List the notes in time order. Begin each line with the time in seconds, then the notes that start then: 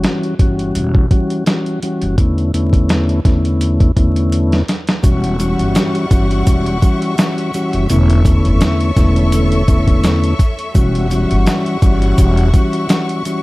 Already playing: E3 G3 C#4 F#4
0.04 snare, closed hi-hat
0.23 closed hi-hat
0.39 G1 E3 G3 C#4 F#4, kick, closed hi-hat
0.59 closed hi-hat
0.75 E1, closed hi-hat
0.95 kick
1.11 E3 G3 C#4 F#4, kick, closed hi-hat
1.30 closed hi-hat
1.46 E3 G3 C#4 F#4, snare, closed hi-hat
1.66 closed hi-hat
1.83 E3 G3 C#4 F#4, closed hi-hat
2.02 F#1, closed hi-hat
2.18 E2 D3 A3 B3 C#4 E4, kick, closed hi-hat
2.38 closed hi-hat
2.53 E2 D3 A3 B3 C#4 E4, closed hi-hat
2.73 kick, closed hi-hat
2.89 snare, closed hi-hat
3.09 closed hi-hat
3.25 E2 D3 A3 B3 C#4 E4, kick, snare, closed hi-hat
3.45 closed hi-hat
3.61 closed hi-hat
3.80 kick, closed hi-hat
3.96 E2 D3 A3 B3 C#4 E4, kick, closed hi-hat
4.16 closed hi-hat
4.32 closed hi-hat
4.52 snare, closed hi-hat
4.68 snare, closed hi-hat
4.87 snare, closed hi-hat
5.02 E1 E3 G3 C#4 F#4 E5 F#5 C#6, kick, closed hi-hat, shaker
5.24 closed hi-hat
5.40 E3 G3 C#4 F#4, closed hi-hat, shaker
5.59 G1, closed hi-hat
5.75 snare, closed hi-hat, shaker
5.95 closed hi-hat
6.11 G1 E3 G3 C#4 F#4, kick, closed hi-hat, shaker
6.31 closed hi-hat
6.47 E1, kick, closed hi-hat, shaker
6.66 closed hi-hat
6.82 E3 G3 C#4 F#4, kick, closed hi-hat, shaker
7.02 closed hi-hat
7.18 E3 G3 C#4 F#4, snare, closed hi-hat, shaker
7.38 closed hi-hat
7.54 E3 G3 C#4 F#4, closed hi-hat, shaker
7.73 F#1, closed hi-hat
7.89 E1 E2 D3 A3 B3 C#4 E4 A4 C#5 C#6, closed hi-hat, shaker
8.10 closed hi-hat
8.25 E2 D3 A3 B3 C#4 E4, kick, closed hi-hat, shaker
8.45 F#1, closed hi-hat
8.61 snare, closed hi-hat, shaker
8.81 closed hi-hat
8.97 E1 E2 D3 A3 B3 C#4 E4, kick, snare, closed hi-hat, shaker
9.16 closed hi-hat
9.32 closed hi-hat, shaker
9.52 closed hi-hat
9.67 E2 D3 A3 B3 C#4 E4, kick, closed hi-hat, shaker
9.87 kick, closed hi-hat
10.04 snare, closed hi-hat, shaker
10.24 closed hi-hat
10.39 kick, closed hi-hat, shaker
10.59 closed hi-hat
10.74 E1 E3 G3 C#4 F#4 F#5 C#6, kick, closed hi-hat, shaker
10.95 closed hi-hat
11.11 E3 G3 C#4 F#4, closed hi-hat, shaker
11.31 G1, closed hi-hat
11.46 snare, closed hi-hat, shaker
11.66 closed hi-hat
11.82 G1 E3 G3 C#4 F#4, kick, closed hi-hat, shaker
12.02 closed hi-hat
12.18 E1, kick, closed hi-hat, shaker
12.37 closed hi-hat
12.54 E3 G3 C#4 F#4, kick, closed hi-hat, shaker
12.73 closed hi-hat
12.89 E3 G3 C#4 F#4, snare, closed hi-hat, shaker
13.09 closed hi-hat
13.25 E3 G3 C#4 F#4, closed hi-hat, shaker